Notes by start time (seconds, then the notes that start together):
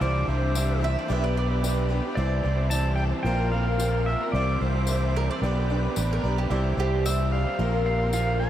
0.00 C2 C3 E3 G3 C4 D4 E4 C5 D5 E5 D6
0.26 C2 G3 C4 E4 C5
0.30 G3 D4
0.40 G3 C4 E4 C5
0.54 C3 E3 G3 C4 D4 E4 C5 E5, tambourine
0.81 G3 D4 E4 E5
0.94 G3 C4 E4 C5
0.99 D5
1.07 B1 B3 D4 G4 B4 D5 G5
1.12 E5
1.20 D4 G4 B4 D5
1.35 B3 D4 G4 B4 D5
1.49 D4 G4 B4
1.63 B3 D4 G4 B4 D5, tambourine
1.89 B3 D4 G4 B4
2.03 D4 G4 B4
2.15 C2 C3 E3 G3 C4 E4 G4 C5 D5 E5
2.19 E4 C5
2.44 C2 G3 C4 E4 G4 C5 D5
2.57 G3 C4 E4 C5
2.70 C3 E3 G3 C4 E4 G4 C5 D5 A5, tambourine
2.74 C5
2.96 E4 G4 D5 G5
3.11 G3 C4 E4 C5
3.23 A#1 A#3 C4 F4 A#4 C5 F5 G5 C6
3.27 F4 A#4
3.37 C4 F4 A#4
3.52 A#3 C4 F4 A#4 C5 F5
3.66 C4 F4 A#4
3.78 A#3 C4 F4 A#4 C5, tambourine
3.82 A#4 C5
4.06 A#3 C4 F4 A#4 C5 E5
4.21 C4 F4 A#4
4.32 C2 C3 E3 G3 E4 G4 C5 D5 E5 D6
4.36 C4 E4 C5
4.60 C2 G3 C4 E4 G4 C5 D5
4.74 G3 C4 E4 C5
4.87 C3 E3 G3 C4 E4 G4 C5 D5, tambourine
4.91 E4 C5 D5
5.16 E4 G4 A#4 D5
5.28 G3 C4 E4 C5 D5
5.41 B1 B3 D4 G4 B4 D5 G5 D6
5.55 D4 G4 B4
5.70 B3 D4 G4 B4 D5
5.83 D4 G4 B4
5.95 A1 B3 D4 G4 B4 D5, tambourine
6.00 G4 B4
6.13 A#4
6.24 B1 B3 D4 G4 B4 D5
6.37 D4 G4 B4
6.50 C2 C3 E3 G3 C4 E4 G4 C5 D5 E5
6.54 E4 C5
6.77 C2 G3 C4 E4 G4 D5
6.81 C5
6.92 G3 C4 E4 C5
7.04 C3 E3 G3 C4 E4 G4 C5 D5 E5, tambourine
7.32 E4 G4 D5 F5
7.46 G3 C4 E4 C5
7.57 A#1 A#3 C4 F4 A#4 C5 F5 C6
7.62 A#4
7.72 C4 F4 A#4
7.85 A#3 C4 F4 A#4 C5 F5
7.99 C4 F4 A#4
8.12 A#3 C4 F4 A#4 C5 F5, tambourine
8.40 A#3 C4 F4 A#4 C5 A5